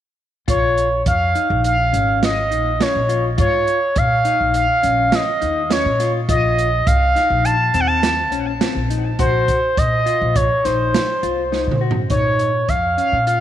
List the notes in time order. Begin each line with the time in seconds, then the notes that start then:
0.48 A#1 F4 C#5, kick, closed hi-hat
0.78 closed hi-hat
1.06 F2 F5, kick, closed hi-hat
1.35 D#4, closed hi-hat
1.50 A#1
1.64 F5, closed hi-hat
1.93 G#1 C#4, closed hi-hat
2.23 D#5, snare, closed hi-hat
2.51 A#1 D#4, closed hi-hat
2.80 C#4 C#5, snare, closed hi-hat
2.95 A#1
3.09 F4, closed hi-hat
3.38 G#2 F4 C#5, kick, closed hi-hat
3.67 closed hi-hat
3.96 A#2 F5, kick, closed hi-hat
4.25 D#4, closed hi-hat
4.41 A#1
4.54 F5, closed hi-hat
4.83 A#1 C#4, closed hi-hat
5.12 D#5, snare, closed hi-hat
5.41 D#2 D#4, closed hi-hat
5.70 C#4 C#5, snare, closed hi-hat
5.85 A#2
6.00 F4, snare, closed hi-hat
6.29 A#1 F4 D#5, kick, closed hi-hat
6.58 closed hi-hat
6.87 C2 F5, kick, closed hi-hat
7.15 D#4, snare, closed hi-hat
7.30 A#1
7.45 A5, closed hi-hat
7.74 D#2 C4 A5, closed hi-hat
7.80 F#5
7.87 A5
8.03 snare, closed hi-hat
8.32 A#1 C#4, closed hi-hat
8.61 C4, snare, closed hi-hat
8.75 A#1
8.90 D#4, closed hi-hat
9.19 A#1 F#4 C5, kick, closed hi-hat
9.48 kick, closed hi-hat
9.77 A#2 D#5, kick, closed hi-hat
10.06 F4, closed hi-hat
10.21 A#1
10.36 C#5, kick, closed hi-hat
10.65 A#1 D#4 C5, snare, closed hi-hat
10.94 snare, closed hi-hat
11.23 C2 F4, closed hi-hat
11.52 D#4, snare
11.67 A#2
11.71 mid tom
11.81 F#4
11.91 floor tom
12.10 A#2 D#4 C#5, kick, closed hi-hat
12.39 closed hi-hat
12.69 F2 F5, kick, closed hi-hat
12.97 C#4 F5, closed hi-hat
13.12 A#2
13.27 F4 F5, closed hi-hat